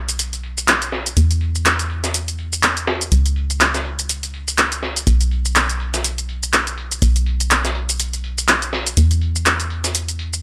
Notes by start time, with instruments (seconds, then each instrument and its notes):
Already playing: analog synth bass B1
0.09 closed hi-hat, shaker
0.19 closed hi-hat, shaker
0.33 closed hi-hat, shaker
0.44 closed hi-hat
0.57 closed hi-hat, shaker
0.68 clap, closed hi-hat, shaker
0.82 closed hi-hat, shaker
0.92 snare, closed hi-hat
1.06 closed hi-hat, shaker
1.17 analog synth bass E2, closed hi-hat, shaker
1.31 closed hi-hat, shaker
1.41 closed hi-hat
1.55 shaker
1.65 clap, closed hi-hat, shaker
1.79 closed hi-hat, shaker
1.90 closed hi-hat
2.04 snare, closed hi-hat, shaker
2.14 closed hi-hat, shaker
2.28 closed hi-hat, shaker
2.39 closed hi-hat
2.53 shaker
2.63 clap, closed hi-hat, shaker
2.77 closed hi-hat, shaker
2.87 snare, closed hi-hat
3.01 closed hi-hat, shaker
3.12 analog synth bass C#2, closed hi-hat, shaker
3.26 closed hi-hat, shaker
3.36 closed hi-hat
3.50 closed hi-hat, shaker
3.61 clap, closed hi-hat, shaker
3.74 snare, closed hi-hat, shaker
3.85 closed hi-hat
3.99 closed hi-hat, shaker
4.09 closed hi-hat, shaker
4.23 closed hi-hat, shaker
4.34 closed hi-hat
4.48 closed hi-hat, shaker
4.58 clap, closed hi-hat, shaker
4.72 closed hi-hat, shaker
4.83 snare, closed hi-hat
4.96 closed hi-hat, shaker
5.07 analog synth bass B1, closed hi-hat, shaker
5.21 closed hi-hat, shaker
5.31 closed hi-hat
5.45 shaker
5.56 clap, closed hi-hat, shaker
5.69 closed hi-hat, shaker
5.80 closed hi-hat
5.94 snare, closed hi-hat, shaker
6.04 closed hi-hat, shaker
6.18 closed hi-hat, shaker
6.29 closed hi-hat
6.43 shaker
6.53 clap, closed hi-hat, shaker
6.67 closed hi-hat, shaker
6.78 closed hi-hat
6.91 closed hi-hat, shaker
7.02 analog synth bass B1, closed hi-hat, shaker
7.16 closed hi-hat, shaker
7.26 closed hi-hat
7.40 closed hi-hat, shaker
7.51 clap, closed hi-hat, shaker
7.65 snare, closed hi-hat, shaker
7.75 closed hi-hat
7.89 closed hi-hat, shaker
8.00 closed hi-hat, shaker
8.13 closed hi-hat, shaker
8.24 closed hi-hat
8.38 closed hi-hat, shaker
8.48 clap, closed hi-hat, shaker
8.62 closed hi-hat, shaker
8.73 snare, closed hi-hat
8.86 closed hi-hat, shaker
8.97 analog synth bass E2, closed hi-hat, shaker
9.11 closed hi-hat, shaker
9.21 closed hi-hat
9.36 shaker
9.46 clap, closed hi-hat, shaker
9.60 closed hi-hat, shaker
9.70 closed hi-hat
9.84 snare, closed hi-hat, shaker
9.95 closed hi-hat, shaker
10.08 closed hi-hat, shaker
10.19 closed hi-hat
10.33 shaker